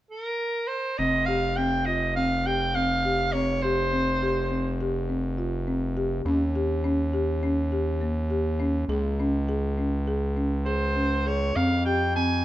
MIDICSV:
0, 0, Header, 1, 4, 480
1, 0, Start_track
1, 0, Key_signature, -4, "minor"
1, 0, Tempo, 585938
1, 807, Time_signature, 9, 3, 24, 8
1, 6799, Tempo, 594059
1, 10151, End_track
2, 0, Start_track
2, 0, Title_t, "Soprano saxophone"
2, 0, Program_c, 0, 64
2, 85, Note_on_c, 0, 70, 75
2, 553, Note_on_c, 0, 72, 68
2, 565, Note_off_c, 0, 70, 0
2, 804, Note_on_c, 0, 75, 75
2, 816, Note_off_c, 0, 72, 0
2, 1031, Note_on_c, 0, 77, 73
2, 1043, Note_off_c, 0, 75, 0
2, 1282, Note_on_c, 0, 79, 76
2, 1294, Note_off_c, 0, 77, 0
2, 1520, Note_on_c, 0, 75, 69
2, 1532, Note_off_c, 0, 79, 0
2, 1764, Note_off_c, 0, 75, 0
2, 1769, Note_on_c, 0, 77, 75
2, 2015, Note_on_c, 0, 79, 82
2, 2027, Note_off_c, 0, 77, 0
2, 2254, Note_on_c, 0, 77, 78
2, 2266, Note_off_c, 0, 79, 0
2, 2727, Note_on_c, 0, 73, 76
2, 2740, Note_off_c, 0, 77, 0
2, 2965, Note_on_c, 0, 72, 72
2, 2978, Note_off_c, 0, 73, 0
2, 3928, Note_off_c, 0, 72, 0
2, 8701, Note_on_c, 0, 72, 69
2, 9200, Note_on_c, 0, 73, 76
2, 9212, Note_off_c, 0, 72, 0
2, 9435, Note_on_c, 0, 77, 81
2, 9447, Note_off_c, 0, 73, 0
2, 9664, Note_off_c, 0, 77, 0
2, 9669, Note_on_c, 0, 79, 75
2, 9897, Note_off_c, 0, 79, 0
2, 9918, Note_on_c, 0, 80, 75
2, 10151, Note_off_c, 0, 80, 0
2, 10151, End_track
3, 0, Start_track
3, 0, Title_t, "Marimba"
3, 0, Program_c, 1, 12
3, 809, Note_on_c, 1, 60, 72
3, 970, Note_off_c, 1, 60, 0
3, 1050, Note_on_c, 1, 67, 61
3, 1212, Note_off_c, 1, 67, 0
3, 1295, Note_on_c, 1, 60, 63
3, 1456, Note_off_c, 1, 60, 0
3, 1532, Note_on_c, 1, 65, 51
3, 1694, Note_off_c, 1, 65, 0
3, 1777, Note_on_c, 1, 60, 65
3, 1938, Note_off_c, 1, 60, 0
3, 2017, Note_on_c, 1, 67, 55
3, 2178, Note_off_c, 1, 67, 0
3, 2259, Note_on_c, 1, 60, 59
3, 2419, Note_off_c, 1, 60, 0
3, 2501, Note_on_c, 1, 67, 56
3, 2660, Note_off_c, 1, 67, 0
3, 2742, Note_on_c, 1, 60, 61
3, 2901, Note_off_c, 1, 60, 0
3, 2984, Note_on_c, 1, 67, 67
3, 3142, Note_off_c, 1, 67, 0
3, 3219, Note_on_c, 1, 60, 62
3, 3378, Note_off_c, 1, 60, 0
3, 3460, Note_on_c, 1, 67, 65
3, 3618, Note_off_c, 1, 67, 0
3, 3695, Note_on_c, 1, 60, 57
3, 3854, Note_off_c, 1, 60, 0
3, 3938, Note_on_c, 1, 67, 64
3, 4096, Note_off_c, 1, 67, 0
3, 4173, Note_on_c, 1, 60, 53
3, 4331, Note_off_c, 1, 60, 0
3, 4410, Note_on_c, 1, 65, 60
3, 4568, Note_off_c, 1, 65, 0
3, 4650, Note_on_c, 1, 60, 58
3, 4808, Note_off_c, 1, 60, 0
3, 4889, Note_on_c, 1, 67, 61
3, 5047, Note_off_c, 1, 67, 0
3, 5129, Note_on_c, 1, 61, 71
3, 5286, Note_off_c, 1, 61, 0
3, 5369, Note_on_c, 1, 67, 62
3, 5526, Note_off_c, 1, 67, 0
3, 5605, Note_on_c, 1, 61, 69
3, 5764, Note_off_c, 1, 61, 0
3, 5844, Note_on_c, 1, 67, 60
3, 6003, Note_off_c, 1, 67, 0
3, 6087, Note_on_c, 1, 61, 67
3, 6244, Note_off_c, 1, 61, 0
3, 6325, Note_on_c, 1, 67, 57
3, 6483, Note_off_c, 1, 67, 0
3, 6563, Note_on_c, 1, 58, 63
3, 6722, Note_off_c, 1, 58, 0
3, 6803, Note_on_c, 1, 67, 57
3, 6961, Note_off_c, 1, 67, 0
3, 7040, Note_on_c, 1, 61, 60
3, 7198, Note_off_c, 1, 61, 0
3, 7282, Note_on_c, 1, 68, 73
3, 7439, Note_off_c, 1, 68, 0
3, 7524, Note_on_c, 1, 61, 62
3, 7680, Note_off_c, 1, 61, 0
3, 7757, Note_on_c, 1, 68, 68
3, 7915, Note_off_c, 1, 68, 0
3, 7993, Note_on_c, 1, 61, 55
3, 8152, Note_off_c, 1, 61, 0
3, 8233, Note_on_c, 1, 68, 68
3, 8392, Note_off_c, 1, 68, 0
3, 8471, Note_on_c, 1, 61, 55
3, 8631, Note_off_c, 1, 61, 0
3, 8709, Note_on_c, 1, 68, 62
3, 8871, Note_off_c, 1, 68, 0
3, 8949, Note_on_c, 1, 61, 55
3, 9112, Note_off_c, 1, 61, 0
3, 9191, Note_on_c, 1, 68, 59
3, 9355, Note_off_c, 1, 68, 0
3, 9439, Note_on_c, 1, 60, 70
3, 9600, Note_off_c, 1, 60, 0
3, 9675, Note_on_c, 1, 67, 59
3, 9837, Note_off_c, 1, 67, 0
3, 9918, Note_on_c, 1, 60, 69
3, 10079, Note_off_c, 1, 60, 0
3, 10151, End_track
4, 0, Start_track
4, 0, Title_t, "Analog synth bass"
4, 0, Program_c, 2, 38
4, 812, Note_on_c, 2, 29, 75
4, 5092, Note_off_c, 2, 29, 0
4, 5122, Note_on_c, 2, 39, 73
4, 7243, Note_off_c, 2, 39, 0
4, 7273, Note_on_c, 2, 37, 72
4, 9405, Note_off_c, 2, 37, 0
4, 9435, Note_on_c, 2, 41, 69
4, 10151, Note_off_c, 2, 41, 0
4, 10151, End_track
0, 0, End_of_file